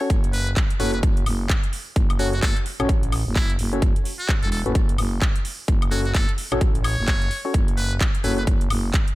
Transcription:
0.01 C#4 F#4 A4 C#5
0.10 F#1, kick, closed hi-hat
0.24 closed hi-hat
0.33 B4, open hi-hat
0.47 closed hi-hat
0.56 kick, clap, closed hi-hat
0.70 closed hi-hat
0.80 F#1 C#4 F#4 A4 B4 C#5, open hi-hat
0.94 B4, closed hi-hat
1.03 F#1, kick, closed hi-hat
1.17 closed hi-hat
1.26 F#1, open hi-hat, high woodblock
1.50 kick, clap, closed hi-hat
1.64 closed hi-hat
1.73 open hi-hat
1.96 F#1, kick, closed hi-hat
2.10 closed hi-hat, high woodblock
2.19 C#4 F#4 A4 C#5, open hi-hat
2.33 F#4, closed hi-hat
2.43 F#1 A4, kick, clap, closed hi-hat
2.56 closed hi-hat
2.66 open hi-hat
2.80 A1 C#4 F#4 A4 C#5, closed hi-hat, high woodblock
2.89 kick, closed hi-hat
3.03 closed hi-hat
3.12 open hi-hat, high woodblock
3.26 F#1
3.36 E4, kick, clap, closed hi-hat
3.50 closed hi-hat
3.59 F#1, open hi-hat
3.73 C#4 F#4 A4 C#5, closed hi-hat
3.82 F#1, kick, closed hi-hat
3.96 closed hi-hat
4.05 open hi-hat
4.19 F#4, closed hi-hat
4.29 kick, clap, closed hi-hat
4.43 E1 A4, closed hi-hat
4.52 A4, open hi-hat
4.66 F#1 C#4 F#4 A4 B4, closed hi-hat
4.75 kick, closed hi-hat
4.89 closed hi-hat
4.98 F#1, open hi-hat, high woodblock
5.22 kick, clap, closed hi-hat
5.36 closed hi-hat
5.45 open hi-hat
5.68 F#1, kick, closed hi-hat
5.82 closed hi-hat, high woodblock
5.91 C#4 F#4 A4 C#5, open hi-hat
6.05 F#4, closed hi-hat
6.15 F#1 A4, kick, clap, closed hi-hat
6.29 closed hi-hat
6.38 open hi-hat
6.52 A1 C#4 F#4 A4 C#5, closed hi-hat, high woodblock
6.61 kick, closed hi-hat
6.75 closed hi-hat
6.84 C#5, open hi-hat, high woodblock
6.98 F#1
7.08 kick, clap, closed hi-hat
7.22 closed hi-hat
7.31 open hi-hat
7.45 C#4 F#4 A4 C#5
7.54 F#1, kick, closed hi-hat
7.68 closed hi-hat
7.77 B4, open hi-hat
7.91 closed hi-hat
8.01 kick, clap, closed hi-hat
8.15 closed hi-hat
8.24 F#1 C#4 F#4 A4 B4 C#5, open hi-hat
8.38 B4, closed hi-hat
8.47 F#1, kick, closed hi-hat
8.61 closed hi-hat
8.70 F#1, open hi-hat, high woodblock
8.94 kick, clap, closed hi-hat
9.08 closed hi-hat

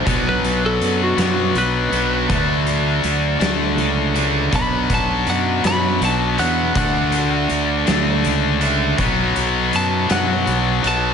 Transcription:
Already playing: C5
0.05 B1 B2 F#3 B3 D4 F#4, kick, closed hi-hat
0.29 B4
0.43 B1 B3 D4 F#4, closed hi-hat
0.66 A4
0.80 F#2 F#3 B3 D4 F#4, closed hi-hat
1.03 F#4
1.17 F#2 B2 F#3 B3 D4 F#4, snare, closed hi-hat
1.55 B1 F#3 B3 D4 F#4 B4, closed hi-hat
1.92 B1 B2 F#3 B3 D4 F#4, closed hi-hat
2.28 D2 D3 F#3 A3 D4, kick, closed hi-hat
2.32 D4 F#4
2.66 A3 D4 F#4, closed hi-hat
3.03 D2 F#3 A3 D4 F#4, closed hi-hat
3.39 D2 D3 A3 D4 F#4, snare, closed hi-hat
3.44 A3
3.77 C#2 F#3 A3 D4 F#4, closed hi-hat
4.14 D3 A3 D4 F#4, closed hi-hat
4.51 B1 B2 F#3 B3 D4 F#4, kick, closed hi-hat
4.55 B5
4.89 B1 B3 D4 F#4, kick, closed hi-hat
4.94 A5
5.26 F#2 F#3 B3 D4 F#4 F#5, closed hi-hat
5.63 F#2 B2 F#3 B3 D4 F#4 B5, snare, closed hi-hat
6.00 B1 F#3 B3 D4 F#4, closed hi-hat
6.05 A5
6.37 E2 F#3 B3 D4 F#4 F#5, closed hi-hat
6.42 B2
6.74 D2 D3 A3 D4 F#5, kick, closed hi-hat
7.12 closed hi-hat
7.49 D2, closed hi-hat
7.86 D2 D3 A3 D4, snare, closed hi-hat
8.24 C#2, closed hi-hat
8.61 D3 A3 D4, closed hi-hat
8.97 B1 B2 F#3 B3, kick, closed hi-hat
9.36 B1, closed hi-hat
9.73 F#2 A5, closed hi-hat
10.09 F#2 B2 F#3 B3 F#5, snare, closed hi-hat
10.47 B1, closed hi-hat
10.83 B1 B2 F#3 B3, closed hi-hat
10.87 A5

